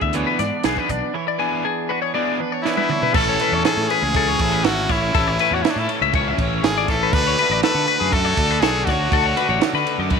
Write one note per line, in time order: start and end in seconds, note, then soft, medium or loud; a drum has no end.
0.00 0.23 D2 medium
0.00 1.13 E3 medium
0.00 0.14 B3 medium
0.00 0.38 D4 medium
0.00 1.68 G#4 medium
0.00 0.15 E5 medium
0.00 kick medium
0.13 0.39 E3 medium
0.13 0.39 B3 medium
0.13 0.63 B3 medium
0.13 0.39 D4 medium
0.13 0.38 G#4 medium
0.13 0.27 C#5 medium
0.13 closed hi-hat medium
0.27 0.39 B4 medium
0.39 0.50 G#2 medium
0.39 0.89 D4 medium
0.39 0.64 D5 medium
0.39 muted overdriven electric guitar stroke soft
0.39 snare soft
0.39 closed hi-hat medium
0.64 0.75 B1 medium
0.64 0.90 E3 medium
0.64 1.12 B3 medium
0.64 0.90 B3 medium
0.64 0.90 D4 medium
0.64 0.78 G#4 medium
0.64 0.89 G#4 medium
0.64 snare loud
0.64 closed hi-hat medium
0.77 0.90 B4 medium
0.77 kick medium
0.89 1.00 B1 medium
0.89 1.12 D4 medium
0.89 1.15 D5 medium
0.89 muted overdriven electric guitar stroke soft
0.89 kick medium
0.89 closed hi-hat medium
1.14 5.14 E3 medium
1.14 1.27 C#5 medium
1.14 muted overdriven electric guitar stroke medium
1.28 1.40 D5 medium
1.38 1.64 E3 medium
1.38 2.14 B3 medium
1.38 1.64 B3 medium
1.38 1.65 D4 medium
1.38 1.64 G#4 medium
1.38 1.65 G#5 medium
1.65 2.39 D4 medium
1.65 1.90 G#4 medium
1.65 muted overdriven electric guitar stroke soft
1.89 2.02 F#4 medium
1.89 2.01 B4 medium
1.89 muted overdriven electric guitar stroke soft
2.02 3.15 G#4 medium
2.02 2.14 C#5 medium
2.14 2.39 E3 medium
2.14 2.40 B3 medium
2.14 2.64 B3 medium
2.14 2.39 D4 medium
2.14 2.39 G#4 loud
2.14 2.41 D5 medium
2.40 2.90 D4 medium
2.40 2.52 B4 medium
2.40 muted overdriven electric guitar stroke medium
2.52 2.77 C#5 medium
2.63 2.90 E3 medium
2.63 3.12 B3 medium
2.63 2.90 B3 medium
2.63 2.90 D4 medium
2.63 3.16 E4 medium
2.63 2.91 G#4 medium
2.63 snare medium
2.77 2.90 B4 medium
2.77 high tom medium
2.89 3.12 D4 medium
2.89 3.02 C#5 medium
2.89 muted overdriven electric guitar stroke soft
2.89 mid tom medium
3.02 3.15 B4 medium
3.02 floor tom medium
3.14 3.36 A1 loud
3.14 4.14 A2 loud
3.14 3.63 E3 loud
3.14 3.43 A3 loud
3.14 3.41 C#4 loud
3.14 3.39 E4 loud
3.14 3.64 A4 loud
3.14 3.27 A4 loud
3.14 kick loud
3.14 crash loud
3.29 3.41 C#5 medium
3.40 3.65 A3 medium
3.40 3.66 C#4 medium
3.40 3.67 E4 medium
3.40 3.53 B4 medium
3.40 ride medium
3.52 3.63 E2 medium
3.52 3.65 C#5 medium
3.64 4.14 E3 medium
3.64 4.16 A3 medium
3.64 4.16 C#4 medium
3.64 3.90 G#4 medium
3.64 3.90 A4 loud
3.64 snare loud
3.64 ride loud
3.68 4.16 E4 medium
3.77 3.88 A2 medium
3.77 snare soft
3.89 4.66 G#4 loud
3.89 4.04 B4 medium
3.89 ride medium
4.02 4.34 C#2 loud
4.02 4.15 G#4 medium
4.14 4.64 A2 loud
4.14 4.63 E3 loud
4.14 4.42 A3 loud
4.14 4.40 C#4 loud
4.14 4.38 E4 loud
4.14 4.28 A4 loud
4.14 kick loud
4.14 ride loud
4.28 4.41 C#5 medium
4.39 4.61 A1 medium
4.39 4.65 A3 medium
4.39 4.65 C#4 medium
4.39 4.67 E4 medium
4.39 4.52 A4 medium
4.39 kick medium
4.39 ride medium
4.52 4.64 B4 medium
4.64 4.85 G#1 loud
4.64 5.14 E3 medium
4.64 4.93 A3 medium
4.64 4.90 C#4 medium
4.64 4.93 F#4 loud
4.64 4.89 A4 medium
4.64 snare loud
4.64 ride loud
4.68 4.88 E4 medium
4.89 5.11 A1 medium
4.89 5.16 A3 medium
4.89 5.16 C#4 medium
4.89 5.17 E4 medium
4.89 5.55 E4 medium
4.89 5.14 C#5 medium
4.89 kick medium
4.89 snare soft
4.89 ride medium
5.15 5.36 A1 medium
5.15 5.64 A2 loud
5.15 5.63 E3 loud
5.15 5.42 A3 loud
5.15 5.39 C#4 loud
5.15 5.37 E4 loud
5.15 5.28 A4 loud
5.15 kick loud
5.15 ride loud
5.28 5.39 C#5 medium
5.39 5.66 A3 medium
5.39 5.65 C#4 medium
5.39 5.66 E4 medium
5.39 5.54 B4 medium
5.39 ride medium
5.51 5.62 E2 medium
5.51 5.64 F#4 medium
5.51 5.78 C#5 medium
5.63 6.14 E3 medium
5.63 6.16 A3 medium
5.63 5.72 E4 medium
5.63 snare loud
5.63 ride loud
5.67 6.16 C#4 medium
5.67 5.81 D4 medium
5.67 6.17 E4 loud
5.76 5.87 A2 medium
5.76 5.89 E4 medium
5.76 6.02 A4 medium
5.76 snare soft
5.89 ride medium
6.01 6.33 C#2 medium
6.01 6.14 E5 medium
6.13 6.64 A2 loud
6.13 6.63 E3 loud
6.13 6.42 A3 loud
6.13 6.40 C#4 loud
6.13 6.28 C#5 medium
6.13 kick loud
6.13 ride loud
6.18 6.38 E4 loud
6.28 6.40 E5 medium
6.38 6.60 A1 medium
6.38 6.65 C#4 medium
6.38 6.66 E4 medium
6.38 6.64 C#5 medium
6.38 kick medium
6.38 ride medium
6.42 6.65 A3 medium
6.63 6.85 G#1 loud
6.63 7.12 E3 medium
6.63 6.92 A3 medium
6.63 6.89 C#4 medium
6.63 6.90 G#4 loud
6.63 snare loud
6.63 ride loud
6.67 6.88 E4 medium
6.78 6.90 D5 medium
6.88 7.10 A1 loud
6.88 7.13 C#4 medium
6.88 7.12 E4 medium
6.88 7.15 A4 loud
6.88 7.01 E5 medium
6.88 kick medium
6.88 snare soft
6.88 ride medium
6.92 7.14 A3 medium
7.03 7.14 B4 medium
7.13 7.34 D2 medium
7.13 7.63 D3 loud
7.13 7.42 A3 loud
7.13 7.40 D4 loud
7.13 7.26 A4 loud
7.13 7.63 B4 loud
7.13 kick loud
7.13 crash loud
7.17 7.39 F#4 loud
7.27 7.39 C#5 medium
7.38 7.64 A3 medium
7.38 7.65 D4 medium
7.38 7.66 F#4 medium
7.38 7.51 B4 medium
7.38 ride medium
7.50 7.61 A1 medium
7.50 7.63 D5 medium
7.63 8.11 D3 medium
7.63 8.12 A3 medium
7.63 8.14 D4 medium
7.63 8.15 F#4 medium
7.63 7.88 A4 medium
7.63 8.14 B4 loud
7.63 snare loud
7.63 ride loud
7.75 7.86 D3 medium
7.75 snare soft
7.88 8.00 B4 medium
7.88 ride medium
8.00 8.33 F#2 medium
8.00 8.13 G#4 medium
8.12 8.61 D3 medium
8.12 8.39 A3 loud
8.12 8.39 D4 loud
8.12 8.37 F#4 loud
8.12 8.25 A4 medium
8.12 8.62 A4 loud
8.12 kick loud
8.12 ride loud
8.25 8.38 C#5 medium
8.37 8.59 D2 medium
8.37 8.62 A3 medium
8.37 8.65 D4 medium
8.37 8.65 F#4 medium
8.37 8.51 A4 medium
8.37 kick medium
8.37 ride medium
8.51 8.63 B4 medium
8.60 8.83 B1 medium
8.60 9.10 D3 medium
8.60 8.89 A3 medium
8.60 8.87 G#4 loud
8.60 8.89 A4 medium
8.60 snare loud
8.60 ride loud
8.65 8.88 D4 medium
8.65 8.86 F#4 medium
8.85 9.09 D2 medium
8.85 9.13 D4 medium
8.85 9.86 F#4 medium
8.85 9.14 F#4 medium
8.85 9.13 C#5 medium
8.85 kick medium
8.85 snare soft
8.85 ride medium
8.90 9.11 A3 medium
9.11 9.33 D2 medium
9.11 9.59 D3 loud
9.11 9.38 A3 loud
9.11 9.37 D4 loud
9.11 9.35 F#4 loud
9.11 9.25 A4 medium
9.11 kick loud
9.11 ride loud
9.26 9.37 C#5 medium
9.36 9.60 A3 medium
9.36 9.62 D4 medium
9.36 9.63 F#4 medium
9.36 9.49 B4 medium
9.36 ride medium
9.49 9.60 A1 medium
9.49 9.74 C#5 medium
9.60 10.08 D3 medium
9.60 10.10 A3 medium
9.60 10.12 D4 loud
9.60 10.13 F#4 medium
9.60 snare loud
9.60 ride loud
9.73 9.84 D3 medium
9.73 10.00 B4 medium
9.73 snare soft
9.87 ride medium
9.98 10.20 F#2 medium
9.98 10.12 D5 medium
10.10 10.20 D3 loud
10.10 10.20 A3 loud
10.10 10.20 D4 loud
10.10 10.20 F#4 loud
10.10 10.20 B4 medium
10.10 kick loud
10.10 ride loud